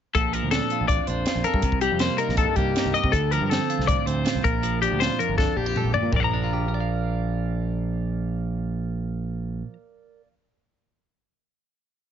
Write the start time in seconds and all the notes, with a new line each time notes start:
0.15 A#1 A#2 A4, kick, closed hi-hat
0.33 F3 A#4, closed hi-hat
0.43 D2
0.51 D4 A4, snare, closed hi-hat
0.70 F4, closed hi-hat
0.81 A1
0.88 F2 D5, kick, closed hi-hat
1.07 A#1 D4 C5, closed hi-hat
1.26 F4, snare, closed hi-hat
1.35 A#1
1.44 A4 A#4, closed hi-hat
1.54 G2, kick
1.62 C2 C3, kick, closed hi-hat
1.72 kick
1.81 G3 G4, closed hi-hat
1.92 F2
1.99 A#3 C5, snare, closed hi-hat
2.18 D#4 A#4, closed hi-hat
2.29 A#1, snare
2.37 G2 A4, kick, closed hi-hat
2.56 C2 A#3 G4, kick, closed hi-hat
2.76 D#4, snare, closed hi-hat
2.85 C2
2.94 G4 D#5, closed hi-hat
3.04 C3, kick
3.12 D2 D3 A4, kick, closed hi-hat
3.31 F3 A#4, closed hi-hat
3.41 G2
3.50 C4 A4, snare, closed hi-hat
3.70 F4, closed hi-hat
3.79 C2, snare
3.87 A2 D5, kick, closed hi-hat
4.06 D2 C4 C5, closed hi-hat
4.25 F4, snare, closed hi-hat
4.35 C2
4.44 A#1 A#2 A#4, kick, closed hi-hat
4.63 F3, closed hi-hat
4.82 D4 G4, closed hi-hat
4.92 D2
5.00 F4 C5, snare, closed hi-hat
5.19 F2 A#4, closed hi-hat
5.29 G1
5.38 D4 A4, kick, snare
5.56 A#1 D4 G4
5.66 F4
5.76 A4, mid tom
5.84 A#1
5.94 A#2 D5, floor tom
6.02 A#2
6.12 A#1 A#2 A#4, kick, floor tom
6.16 D5 F5
6.23 F3 A#5
6.34 D4
6.43 F4
6.53 G4
6.68 A#4
6.74 D5
6.80 F5